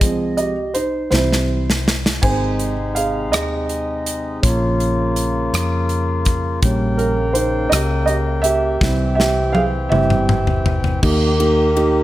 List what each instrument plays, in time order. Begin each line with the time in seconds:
Already playing: upright piano G#4 D#5
0.01 fingered electric bass C2, upright piano F3 G#3 C4, kick, closed hi-hat
0.37 upright piano G4 D#5, closed hi-hat
0.74 upright piano D#4 C5, closed hi-hat
1.11 fingered electric bass C2, upright piano E3 G3 C4 E4 C5, snare
1.32 snare
1.70 snare
1.88 snare
2.06 snare
2.22 fingered electric bass G#1, harmonium C3 G#3 D#4, upright piano D#3 G#3 C4 C5 G#5, kick, splash
2.59 closed hi-hat
2.95 upright piano G#4 F5, closed hi-hat
3.32 fingered electric bass D#2, upright piano G#4 D#5, cross-stick, closed hi-hat
3.69 closed hi-hat
4.06 closed hi-hat
4.41 fingered electric bass A#1, harmonium C#3 A#3 F4, upright piano F3 A#3 C#4 F4 C#5, kick, closed hi-hat
4.80 closed hi-hat
5.16 closed hi-hat
5.53 fingered electric bass F2, cross-stick, closed hi-hat
5.89 closed hi-hat
6.25 kick, closed hi-hat
6.62 fingered electric bass A#1, upright piano G3 A#3 C#4, harmonium A#3 G5, kick, closed hi-hat
6.98 upright piano C#4 A#4, closed hi-hat
7.33 upright piano D#4 C5, closed hi-hat
7.69 fingered electric bass C#2, upright piano G4 D#5, cross-stick, closed hi-hat
8.06 upright piano G4 D#5, closed hi-hat
8.42 upright piano G4 E5, closed hi-hat
8.80 fingered electric bass C2, harmonium E3 C4, upright piano G3 C4 E4, kick, snare
9.15 upright piano G4 E5
9.20 snare
9.53 upright piano G#4 F5, high tom
9.89 fingered electric bass G1, upright piano G3 C4 E4 G4 E5, mid tom
10.10 mid tom
10.29 mid tom
10.47 floor tom
10.66 floor tom
10.84 floor tom
11.02 fingered electric bass D#2, harmonium D#3 A#3 G4, upright piano A#3 D#4 G4, kick, crash
11.39 upright piano A#3 D#4 G4, ride
11.76 upright piano A#3 D#4 G4, ride